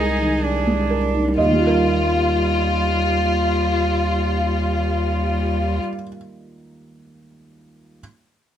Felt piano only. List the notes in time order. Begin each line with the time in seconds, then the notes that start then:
Already playing: C2 G#3 D#4 A#4 D#5
0.21 D#3
0.67 G#3
0.90 A#4
1.14 D#4
1.38 D#2 D#5
1.46 D#3
1.52 G3
1.60 F4
1.67 A#4
1.74 F5